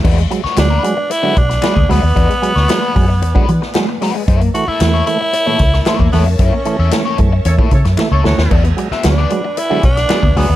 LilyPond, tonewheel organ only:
\new Staff \with { instrumentName = "Tonewheel organ" } { \clef bass \time 4/4 \key e \mixolydian \tempo 4 = 113 r8 <fis gis>16 r16 <fis gis>16 r16 <fis gis>16 r8 <d fis gis>16 <fis gis>16 r16 <fis gis>16 r16 <fis gis>16 r16 | r8 <fis gis>16 r16 <fis gis>16 r16 <fis gis>16 r8 <d fis gis>16 <fis gis>16 r16 <fis gis>16 r16 <fis gis>16 r16 | r8 <e a>16 r16 <e a>16 r16 <e a>16 r8 <ais, e a>16 <e a>16 r16 <e a>16 r16 <e a>16 r16 | r8 <e a>16 r16 <e a>16 r16 <e a>16 r8 <ais, e a>16 <e a>16 r16 <e a>16 r16 <e a>16 r16 |
r8 <fis gis>16 r16 <fis gis>16 r16 <fis gis>16 r8 <d fis gis>16 <fis gis>16 r16 <fis gis>16 r16 <fis gis>16 r16 | }